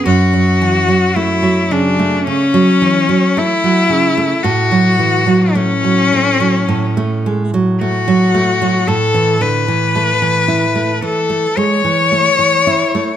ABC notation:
X:1
M:4/4
L:1/16
Q:1/4=55
K:F#m
V:1 name="Cello"
F4 E2 D2 C4 E4 | F4 C6 z2 F4 | [K:A] A2 B6 A2 c6 |]
V:2 name="Nylon-string guitar" clef=bass
F,, F, E, F, A, F, C, A, C, F, E, F, A, F, C, A, | A,, F, E, F, A, F, A, F, A,, A, G, F, A, F, A, F, | [K:A] A,, E, D, E, A, E, E A, E, A, G, E, A, E, E A, |]